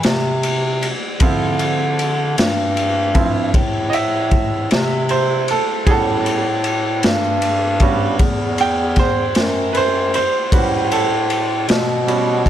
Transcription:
0.03 bass clarinet C3, snare, ride
0.43 ride
0.82 ride
1.20 bass clarinet D3, grand piano F3 C4 E4, kick, ride
1.59 ride
1.99 ride
2.38 bass clarinet G2, snare, ride
2.77 ride
3.15 grand piano F3 C4 E4, kick, ride
3.54 bass clarinet A2, kick, ride
3.90 grand piano D#5, ride
3.94 grand piano E5
4.31 kick, ride
4.71 bass clarinet C3, snare, ride
5.09 grand piano C5, ride
5.48 grand piano A4, ride
5.86 bass clarinet A2, grand piano G3 B3 C#4 F#4 G#4, kick, ride
5.91 grand piano A4
6.26 ride
6.64 ride
7.03 bass clarinet G2, snare, ride
7.42 ride
7.80 grand piano G3 B3 C#4 F#4, kick, ride
8.19 bass clarinet E2, kick, ride
8.58 grand piano G5, ride
8.96 grand piano C5, kick, snare, ride
9.35 bass clarinet F#2, snare, ride
9.73 grand piano B4, ride
9.77 grand piano C5
10.14 grand piano C5, ride
10.52 bass clarinet A2, grand piano G3 C#4 F#4 B4, kick, ride
10.91 grand piano A4, ride
11.30 ride
11.68 bass clarinet B2, snare, ride
12.07 grand piano G3 B3 C#4 F#4, ride
12.46 kick, ride

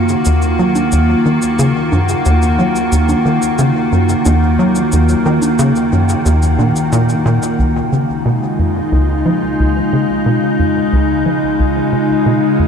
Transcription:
Already playing: analog synth bass F#2, ambient pad D#3 A#3 F4 F#4
0.09 shaker
0.25 analog synth bass D#2, shaker
0.42 shaker
0.59 analog synth bass F#3
0.75 high conga, shaker
0.92 analog synth bass D#2, shaker
1.25 analog synth bass D#3
1.42 shaker
1.59 analog synth bass C#3, shaker
1.92 analog synth bass F#2, high conga
2.09 shaker
2.25 analog synth bass D#2, shaker
2.42 shaker
2.59 analog synth bass F#3
2.76 shaker
2.92 analog synth bass D#2, shaker
3.09 high conga, shaker
3.25 analog synth bass D#3
3.42 shaker
3.59 analog synth bass C#3, shaker
3.92 analog synth bass F#2
4.09 shaker
4.25 analog synth bass D#2, high conga, shaker
4.59 analog synth bass F#3
4.75 shaker
4.92 analog synth bass D#2, shaker
5.09 shaker
5.26 analog synth bass D#3
5.42 high conga, shaker
5.59 analog synth bass C#3, shaker
5.76 shaker
5.92 analog synth bass F#2
6.09 shaker
6.26 analog synth bass D#2, shaker
6.42 shaker
6.59 analog synth bass A#2, high conga
6.76 shaker
6.92 analog synth bass A#2, shaker
7.09 shaker
7.26 analog synth bass A#2
7.43 shaker
7.59 analog synth bass C#2, ambient pad C#3
7.92 analog synth bass C#3, ambient pad G#3
8.00 ambient pad D#4 F4
8.25 analog synth bass B2
8.59 analog synth bass F2
8.92 analog synth bass C#2
9.25 analog synth bass F3
9.59 analog synth bass C#2
9.93 analog synth bass C#3
10.26 analog synth bass B2
10.59 analog synth bass F2
10.93 analog synth bass C#2
11.26 analog synth bass F3
11.59 analog synth bass C#2
11.93 analog synth bass C#3
12.26 analog synth bass B2
12.59 analog synth bass F2

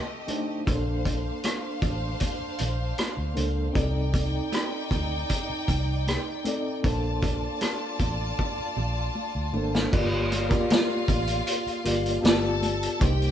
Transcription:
Already playing: violin section A3 G4 D#5
0.28 reed electric piano A3 D4 D#4 C5, closed hi-hat, high conga
0.65 fingered electric bass A#1, reed electric piano A#3 D4 A4 C5, violin section D4 C5 F5, kick, closed hi-hat, muted conga
1.05 kick, closed hi-hat, muted conga
1.43 cross-stick, closed hi-hat, high conga
1.82 fingered electric bass A1, kick, closed hi-hat, low conga
2.20 kick, closed hi-hat, muted conga
2.40 muted fingered electric bass stroke
2.58 fingered electric bass A#1, closed hi-hat, low conga
2.98 cross-stick, closed hi-hat, high conga
3.17 fingered electric bass D2
3.34 fingered electric bass C#2, reed electric piano A#3 D4 A4 C5, closed hi-hat, high conga
3.73 fingered electric bass C2, reed electric piano C4 D#4 A4 D5, violin section D#4 D5 G5, kick, closed hi-hat, muted conga
4.14 kick, closed hi-hat, muted conga
4.53 cross-stick, closed hi-hat, high conga
4.91 fingered electric bass D2, kick, closed hi-hat, low conga
5.29 kick, closed hi-hat, muted conga
5.50 muted fingered electric bass stroke
5.68 fingered electric bass C2, kick, closed hi-hat, low conga
6.07 cross-stick, closed hi-hat, high conga
6.44 reed electric piano C4 D#4 A4 D5, closed hi-hat, high conga
6.83 fingered electric bass A#1, reed electric piano A#3 D4 A4 C5, violin section F4 D5 A5, kick, closed hi-hat, muted conga
7.22 kick, closed hi-hat, muted conga
7.61 cross-stick, closed hi-hat, high conga
7.99 fingered electric bass A1, kick, closed hi-hat, low conga
8.39 kick, muted conga
8.58 muted fingered electric bass stroke
8.77 fingered electric bass A#1, low conga
9.15 high conga
9.35 fingered electric bass D2
9.53 fingered electric bass G#1, reed electric piano A#3 D4 A4 C5, high conga
9.75 snare
9.92 fingered electric bass G1, reed electric piano A#3 F4 G4 D5, violin section F4 F5, kick, crash, muted conga
10.32 closed hi-hat, muted conga
10.49 reed electric piano A#3 F4 G4 D5, kick, closed hi-hat
10.70 snare, closed hi-hat, high conga
11.08 fingered electric bass A1, kick, closed hi-hat, low conga
11.27 closed hi-hat
11.47 closed hi-hat
11.66 muted fingered electric bass stroke, closed hi-hat
11.84 fingered electric bass G1, reed electric piano A#3 F4 G4 D5, closed hi-hat
12.06 closed hi-hat
12.22 fingered electric bass G1, reed electric piano B3 F4 G4 D5, violin section A4 A5, snare, closed hi-hat, high conga
12.62 closed hi-hat, high conga
12.83 closed hi-hat
13.00 fingered electric bass C2, reed electric piano A#3 D#4 G4 C5, violin section G4 G5, kick, closed hi-hat, muted conga
13.22 closed hi-hat

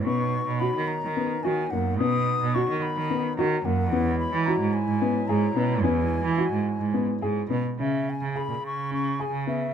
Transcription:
Already playing: woodwind section F#3
0.05 cello B2, woodwind section B3 D#4, grand piano B3, flute C#6
0.47 cello B2
0.59 grand piano F#4, flute B5
0.75 cello D#3
0.88 flute A#5
1.04 cello D#3
1.17 grand piano B3
1.43 cello D#3, grand piano F#4, flute G#5
1.71 cello F#2, grand piano A#3, flute F#5
1.98 cello B2, grand piano B3, flute D#6
2.42 cello B2
2.54 grand piano F#4, flute C#6
2.69 cello D#3
2.82 flute B5
2.96 cello D#3
3.10 grand piano B3
3.37 cello D#3, grand piano F#4, flute A#5
3.65 cello F#2, grand piano A#3, flute F#5
3.92 cello E2, woodwind section F#3 G#3 E4, grand piano B3
4.19 flute B5
4.32 cello E3
4.46 grand piano F#4, flute A#5
4.60 cello G#2
4.73 flute G#5
4.87 cello G#2
5.02 grand piano B3
5.28 cello G#2, grand piano G#4, flute A#5
5.55 cello B2, grand piano B3
5.82 cello E2, grand piano B3, flute G#5
6.24 cello E3
6.38 grand piano F#4
6.52 cello G#2
6.79 cello G#2
6.94 grand piano B3
7.22 cello G#2, grand piano G#4
7.50 cello B2, grand piano B3
7.79 cello C#3, grand piano C#4, flute E5
8.10 flute G#5
8.21 cello C#3
8.36 grand piano G#4, flute B5
8.48 cello A#2
8.62 cello C#3, flute C#6
8.91 grand piano C#4, flute C#6
9.20 grand piano G#4, flute G#5
9.31 cello C#3
9.47 grand piano B3, flute E5

